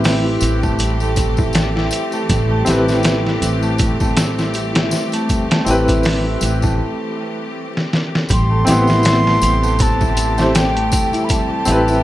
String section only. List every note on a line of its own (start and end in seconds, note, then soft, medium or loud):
0.00 8.26 E3 medium
0.00 8.26 A3 medium
0.00 8.26 C4 medium
0.00 8.26 G4 medium
8.30 12.03 C3 medium
8.30 12.03 E3 medium
8.30 12.03 A3 medium
8.30 12.03 G4 medium